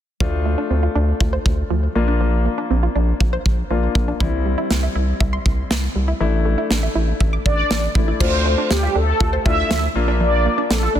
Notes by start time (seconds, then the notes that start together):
0.20 D2 F3 A3 D4 F4, kick
0.45 A3
0.58 D4
0.70 D2 C4
0.83 F4
0.95 D2 D4
1.20 D2 F4, kick
1.33 C5
1.46 D2, kick
1.70 D2 F3
1.95 A#1 A#3 D4 F4
2.08 D4
2.20 F3
2.46 A#3
2.58 D4
2.70 A#1 C4
2.83 F4
2.95 A#1 D4
3.20 A#1 F4, kick
3.33 C5
3.46 A#1, kick
3.70 A#1 F3 A#3 D4 F4
3.95 A#1 A#3, kick
4.08 D4
4.20 C2 E3 G3 C4 E4, kick
4.45 G3
4.58 E4
4.70 C2 C4, snare
4.83 E5
4.95 C2 E4
5.20 C2 E5, kick
5.33 C6
5.46 C2, kick
5.70 C2 E3, snare
5.96 C2 G3
6.08 E4
6.20 A1 E3 A3 D4 E4
6.45 A3
6.58 E4
6.70 A1 D4, snare
6.83 E5
6.95 A1 E4
7.21 A1 E5, kick
7.33 D6
7.45 A1 D5, kick
7.70 A1 E3, snare
7.95 A1 A3 D4 E4, kick
8.08 E4
8.20 D2 F3 A3 D4 F4 C5, kick, crash
8.46 A3
8.58 D4
8.70 D2 C4 G4, snare
8.83 F4
8.95 D2 D4 A4
9.20 D2 F4, kick
9.33 C5
9.45 D2 A3 D4 F4 E5, kick
9.70 D2 F3, snare
9.95 A#1 A#3 D4 F4
10.08 D4
10.20 F3 D5
10.45 A#3
10.58 D4
10.70 A#1 C4 A4, snare
10.83 F4
10.95 A#1 D4 A#4